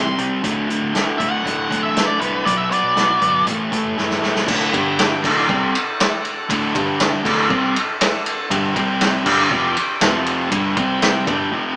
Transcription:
Already playing: picked electric bass A1, overdriven electric guitar C3 G3 C4, tonewheel organ G3 E4 C5, lead electric guitar C6
0.18 picked electric bass C2, overdriven electric guitar C3 G3 C4, closed hi-hat
0.42 picked electric bass D1, overdriven electric guitar D2 A2 D3, tonewheel organ A3 F#4 D5, kick, closed hi-hat
0.69 overdriven electric guitar D2 A2 D3, closed hi-hat
0.82 picked electric bass D1
0.94 overdriven electric guitar D2 A2 D3, snare, closed hi-hat
1.18 picked electric bass D1, overdriven electric guitar D2 A2 D3, lead electric guitar E5, kick, closed hi-hat
1.31 lead electric guitar F#5
1.44 picked electric bass D1, overdriven electric guitar D2 A2 D3, kick, closed hi-hat
1.69 overdriven electric guitar D2 A2 D3, kick, closed hi-hat
1.83 picked electric bass A1, lead electric guitar E5
1.95 overdriven electric guitar D2 A2 D3, snare, closed hi-hat
2.07 lead electric guitar D5
2.20 picked electric bass C2, overdriven electric guitar D2 A2 D3, lead electric guitar B4, closed hi-hat
2.45 picked electric bass B1, overdriven electric guitar B2 F#3 B3, tonewheel organ B3 F#4 D5, lead electric guitar D5, kick, closed hi-hat
2.58 lead electric guitar E5
2.71 overdriven electric guitar B2 F#3 B3, lead electric guitar D5, closed hi-hat
2.84 picked electric bass B1
2.96 overdriven electric guitar B2 F#3 B3, snare, closed hi-hat
3.21 picked electric bass G1, overdriven electric guitar B2 F#3 B3, kick, closed hi-hat
3.46 picked electric bass A1, overdriven electric guitar A2 E3 A3, tonewheel organ A#3 F4, kick, closed hi-hat
3.50 tonewheel organ D5
3.63 tonewheel organ A3 E4 C#5
3.71 overdriven electric guitar A2 E3 A3, kick, closed hi-hat
3.84 picked electric bass F#1
3.97 picked electric bass F#1, overdriven electric guitar A2 E3 A3, snare
4.10 snare
4.16 tonewheel organ G3 A3
4.21 picked electric bass E1, overdriven electric guitar A2 E3 A3, tonewheel organ B3 C4, snare
4.27 tonewheel organ D4 E4
4.33 tonewheel organ F4 G4, snare
4.38 tonewheel organ A4
4.42 tonewheel organ B4 C5
4.47 picked electric bass D1, overdriven electric guitar D2 A2 D3, kick, crash
4.73 picked electric bass G1, overdriven electric guitar G2 D3 G3, tonewheel organ D4 G4 G5, kick, ride
4.99 snare, ride
5.23 picked electric bass D1, overdriven electric guitar D2 A2 D3, tonewheel organ D#4 A#4 G5, kick, crash
5.41 tonewheel organ D4 A4 F#5
5.48 picked electric bass C2, overdriven electric guitar C3 G3 C4, kick
5.75 ride
6.00 snare, ride
6.25 ride
6.49 picked electric bass D1, overdriven electric guitar D2 A2 D3, kick, ride
6.74 picked electric bass G1, overdriven electric guitar G2 D3 G3, tonewheel organ D4 G4 G5, kick, ride
7.00 snare, ride
7.24 picked electric bass D1, overdriven electric guitar D2 A2 D3, tonewheel organ D4 A4 F#5, kick, crash
7.49 picked electric bass C2, overdriven electric guitar C3 G3 C4, kick
7.76 ride
8.01 snare, ride
8.26 ride
8.50 picked electric bass G1, overdriven electric guitar G2 D3 G3, kick, ride
8.74 picked electric bass C2, overdriven electric guitar C3 G3 C4, tonewheel organ C4 G4 G5, kick, ride
9.01 snare, ride
9.24 picked electric bass G1, overdriven electric guitar G2 D3 G3, tonewheel organ D4 G4 G5, kick, crash
9.50 picked electric bass F1, overdriven electric guitar F2 C3 F3, kick
9.77 ride
10.00 picked electric bass F1, overdriven electric guitar F2 C3 F3, tonewheel organ C4 F4 F5, snare, ride
10.26 ride
10.51 picked electric bass G1, overdriven electric guitar G2 D3 G3, kick, ride
10.75 picked electric bass C2, overdriven electric guitar C3 G3 C4, tonewheel organ C4 G4 G5, kick, ride
11.02 snare, ride
11.25 picked electric bass G1, overdriven electric guitar G2 D3 G3, tonewheel organ D4 G4 G5, kick, ride
11.53 overdriven electric guitar F2 C3 F3

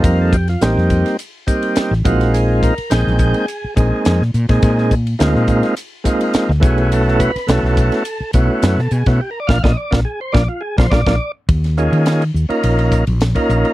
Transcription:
Already playing: tonewheel organ G3 A#3 C4 D#4 F4
0.04 fretless electric bass F2, tonewheel organ A#4, kick, hi-hat pedal, ride
0.22 tonewheel organ A4
0.33 tonewheel organ G4, kick, hi-hat pedal, ride
0.48 tonewheel organ F4, snare, ride
0.61 fretless electric bass A1, tonewheel organ G3 A#3 C4 D#4 G4, snare, hi-hat pedal, ride
0.77 fretless electric bass F2, snare
0.90 kick, hi-hat pedal, ride
1.06 snare, ride
1.19 hi-hat pedal, ride
1.47 tonewheel organ G3 A#3 C4 D#4 G4, kick, hi-hat pedal, ride
1.62 ride
1.76 muted fretless electric bass stroke, snare, hi-hat pedal, ride
1.91 fretless electric bass A1, snare
2.04 fretless electric bass A#1, tonewheel organ G#3 A#3 C4 D#4 F4 F#4, kick, hi-hat pedal, ride
2.21 snare, ride
2.34 tonewheel organ G#4, hi-hat pedal, ride
2.63 tonewheel organ A#4, kick, hi-hat pedal, ride
2.78 muted fretless electric bass stroke, ride
2.90 fretless electric bass A#1, tonewheel organ G#3 A#3 C4 D#4 G#4 G5, snare, hi-hat pedal, ride
3.07 fretless electric bass A#1, snare
3.19 kick, hi-hat pedal, ride
3.34 ride
3.48 hi-hat pedal, ride
3.64 muted fretless electric bass stroke
3.76 fretless electric bass A#1, tonewheel organ G#3 A#3 C4 D#4 G#4, kick, hi-hat pedal, ride
4.05 fretless electric bass F2, snare, hi-hat pedal, ride
4.21 fretless electric bass A#2, snare
4.34 fretless electric bass A#2, hi-hat pedal, ride
4.49 fretless electric bass A#2, tonewheel organ G#3 A#3 C4 D#4 G#4, kick, snare, ride
4.62 fretless electric bass A#2, kick, hi-hat pedal, ride
4.78 snare
4.91 kick, hi-hat pedal, ride
5.07 ride
5.19 fretless electric bass D2, tonewheel organ G#3 A#3 C4 D#4 F4, snare, hi-hat pedal, ride
5.36 fretless electric bass A#2, snare
5.47 kick, hi-hat pedal, ride
5.63 snare, ride
5.77 hi-hat pedal, ride
6.04 tonewheel organ G#3 A#3 C4 D#4 F4, kick, hi-hat pedal, ride
6.21 ride
6.34 muted fretless electric bass stroke, snare, hi-hat pedal, ride
6.49 fretless electric bass D2, snare
6.60 fretless electric bass B1, tonewheel organ A3 B3 C#4 E4 F#4 G#4, kick, hi-hat pedal, ride
6.78 ride
6.92 tonewheel organ A4, hi-hat pedal, ride
7.08 snare
7.20 tonewheel organ B4, kick, hi-hat pedal, ride
7.36 muted fretless electric bass stroke, snare, ride
7.47 fretless electric bass B1, tonewheel organ A3 B3 C#4 E4 F#4 A4, snare, hi-hat pedal, ride
7.63 fretless electric bass B1, snare
7.77 kick, hi-hat pedal, ride
7.92 snare, ride
8.05 hi-hat pedal, ride
8.20 muted fretless electric bass stroke
8.33 fretless electric bass B1, tonewheel organ A3 B3 C#4 E4 F#4, kick, hi-hat pedal, ride
8.62 fretless electric bass F#2, snare, hi-hat pedal, ride
8.78 fretless electric bass B2, tonewheel organ A4, snare
8.91 fretless electric bass B2, tonewheel organ G#4, hi-hat pedal, ride
9.06 fretless electric bass B2, tonewheel organ A3 B3 C#4 E4 F#4, kick, snare, ride
9.21 tonewheel organ G4
9.31 tonewheel organ A#4
9.40 tonewheel organ D5
9.47 fretless electric bass A#1, tonewheel organ A#3 D4 F4 F5, kick, snare
9.63 fretless electric bass A#1, tonewheel organ A#3 D4 F4 D#5, kick, snare
9.77 tonewheel organ D5
9.91 fretless electric bass A#1, tonewheel organ A#3 D4 F4, kick, snare
10.05 tonewheel organ G#4
10.21 tonewheel organ C5
10.32 fretless electric bass A#1, tonewheel organ A#3 D4 F4 D5, kick, snare
10.49 tonewheel organ F4
10.61 tonewheel organ G#4
10.78 fretless electric bass A#1, tonewheel organ A#3 D4 F4 C5, kick, snare
10.90 fretless electric bass A#1, tonewheel organ A#3 D4 F4 D5, kick, snare
11.07 fretless electric bass A#1, tonewheel organ A#3 D4 F4, kick, snare
11.49 fretless electric bass D#2, kick, ride
11.64 snare, ride
11.77 tonewheel organ A#3 C#4 D#4 F4 G#4, hi-hat pedal
11.92 fretless electric bass D#3, ride
12.06 snare, ride
12.22 ride
12.34 fretless electric bass D#2, hi-hat pedal
12.49 tonewheel organ A#3 C#4 D#4 F4 A#4, muted fretless electric bass stroke, ride
12.63 fretless electric bass A#1, ride
12.79 ride
12.92 kick, hi-hat pedal
13.07 fretless electric bass A#1, ride
13.20 snare, ride
13.35 tonewheel organ A#3 C#4 D#4 F4 A#4, kick, ride
13.49 fretless electric bass A#1, hi-hat pedal
13.65 ride

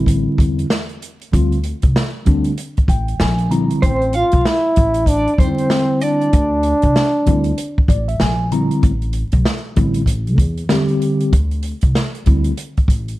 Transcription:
Already playing: upright bass A1, tine electric piano D3 G3 C4 E4
0.06 kick, closed hi-hat
0.38 upright bass E2, kick, closed hi-hat
0.59 closed hi-hat
0.70 snare
0.89 closed hi-hat
1.02 closed hi-hat
1.21 closed hi-hat
1.32 upright bass D2, tine electric piano D3 G3 C4 F4, kick, closed hi-hat
1.52 closed hi-hat
1.63 closed hi-hat
1.82 upright bass C2, kick, closed hi-hat
1.96 snare
2.26 upright bass D2, tine electric piano D3 G3 C4 D4, kick, closed hi-hat
2.44 closed hi-hat
2.58 closed hi-hat
2.77 kick, closed hi-hat
2.88 upright bass A1, tine electric piano G5, kick, closed hi-hat
3.08 closed hi-hat
3.20 upright bass A#1, tine electric piano G#5, snare
3.38 closed hi-hat
3.50 tine electric piano D3 G3 C4 E4 A#5, closed hi-hat
3.71 closed hi-hat
3.82 upright bass A1, trombone C4, clean electric guitar C5, kick, closed hi-hat
4.02 closed hi-hat
4.13 trombone F4, clean electric guitar F5, closed hi-hat
4.32 upright bass B1, kick, closed hi-hat
4.45 trombone E4, clean electric guitar E5, snare
4.76 upright bass A1, kick, closed hi-hat
4.94 closed hi-hat
5.06 trombone D4, clean electric guitar D5, kick, closed hi-hat
5.27 closed hi-hat
5.34 trombone D4, clean electric guitar D5
5.38 upright bass E2, tine electric piano D3 G3 C4 D#4, trombone C4, clean electric guitar C5, kick, closed hi-hat
5.47 tine electric piano E4
5.58 closed hi-hat
5.70 snare
6.01 trombone D4, clean electric guitar D5, closed hi-hat
6.21 closed hi-hat
6.33 upright bass D2, kick, closed hi-hat
6.63 closed hi-hat
6.82 upright bass C2, kick, closed hi-hat
6.96 snare
7.26 upright bass D2, tine electric piano D3 G3 C4 E4, kick, closed hi-hat
7.44 closed hi-hat
7.58 closed hi-hat
7.78 kick
7.88 upright bass A1, tine electric piano D5, kick, closed hi-hat
8.08 tine electric piano E5, closed hi-hat
8.20 upright bass A#1, tine electric piano G#5, snare
8.51 tine electric piano D3 G3 C4 E4 A#5, closed hi-hat
8.71 closed hi-hat
8.83 upright bass A1, kick, closed hi-hat
9.02 closed hi-hat
9.13 closed hi-hat
9.32 upright bass B1, kick, closed hi-hat
9.46 snare
9.76 upright bass A1, tine electric piano D3 G3 C4 E4, kick, closed hi-hat
9.94 closed hi-hat
10.06 kick, closed hi-hat
10.27 closed hi-hat
10.38 upright bass E2, kick, closed hi-hat
10.57 closed hi-hat
10.69 tine electric piano D3 G3 C4 G4, snare
10.88 closed hi-hat
11.02 closed hi-hat
11.21 closed hi-hat
11.33 upright bass D2, kick, closed hi-hat
11.51 closed hi-hat
11.63 closed hi-hat
11.81 upright bass C2, kick, closed hi-hat
11.95 snare
12.15 closed hi-hat
12.26 upright bass D2, tine electric piano D3 G3 C4 E4, kick, closed hi-hat
12.44 closed hi-hat
12.57 closed hi-hat
12.77 kick, closed hi-hat
12.88 upright bass A1, kick, closed hi-hat
13.08 closed hi-hat

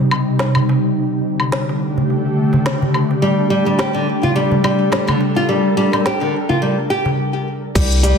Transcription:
Already playing: ambient pad C3 G3 D#4
0.11 darbuka ka, darbuka tek, low woodblock
0.39 snare, darbuka tek
0.55 darbuka dum, low woodblock
0.69 darbuka ka, darbuka tek
0.96 ambient pad D3
1.33 ambient pad G4
1.40 darbuka ka, low woodblock
1.52 snare
1.67 ambient pad A3, darbuka tek
1.97 ambient pad D4, darbuka dum
2.10 darbuka ka
2.53 darbuka ka, darbuka dum
2.66 snare
2.82 darbuka dum
2.94 darbuka ka, darbuka tek, low woodblock
3.11 darbuka ka
3.22 nylon-string guitar G3, ambient pad G3
3.50 nylon-string guitar G3
3.66 nylon-string guitar G3, darbuka ka
3.79 nylon-string guitar G4, snare
3.94 nylon-string guitar D3
4.11 ambient pad A4
4.23 nylon-string guitar F4, darbuka dum
4.36 nylon-string guitar G3
4.52 darbuka dum
4.64 nylon-string guitar G3, darbuka ka, darbuka tek, low woodblock
4.92 nylon-string guitar G3, snare, darbuka tek
5.08 nylon-string guitar D3, darbuka dum, low woodblock
5.21 darbuka ka, darbuka tek
5.27 ambient pad A#4
5.36 nylon-string guitar F4
5.49 nylon-string guitar G3
5.77 nylon-string guitar G3
5.93 nylon-string guitar G3, darbuka ka, low woodblock
6.06 nylon-string guitar G4, snare
6.21 nylon-string guitar D3, darbuka tek
6.49 nylon-string guitar F4, darbuka dum
6.62 nylon-string guitar G3, darbuka ka
6.90 nylon-string guitar G4
7.06 darbuka ka, darbuka dum
7.75 analog synth bass C2, ambient pad C3, nylon-string guitar G3, kick, crash, shaker
7.92 shaker
8.03 nylon-string guitar G3, open hi-hat, shaker

